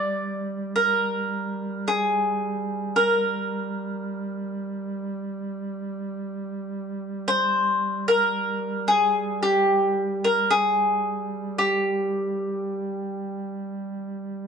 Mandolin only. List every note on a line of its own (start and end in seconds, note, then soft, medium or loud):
0.00 0.75 D5 medium
0.76 1.91 A#4 medium
1.88 3.01 G#4 medium
2.96 5.10 A#4 medium
7.28 8.08 C5 medium
8.08 8.90 A#4 medium
8.88 9.42 G#4 medium
9.43 10.27 G4 medium
10.24 10.52 A#4 medium
10.51 11.58 G#4 medium
11.58 14.47 G4 medium